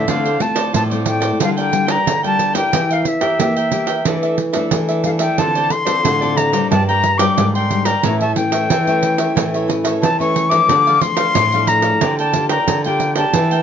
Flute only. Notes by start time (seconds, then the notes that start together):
Already playing: E5
0.09 F5
0.42 A5
0.75 A5
1.08 G5
1.44 F5
1.60 G5
1.91 A#5
2.26 A5
2.57 G5
2.93 F5
3.08 E5
5.05 F5
5.20 G5
5.39 A5
5.71 C6
6.37 A#5
6.71 A5
6.88 A#5
7.18 D6
7.53 C6
7.85 A#5
8.21 A5
8.36 G5
10.02 A5
10.20 C#6
10.49 D6
11.01 C6
11.68 A#5
12.19 A5
12.51 A#5
12.86 G5
13.18 A5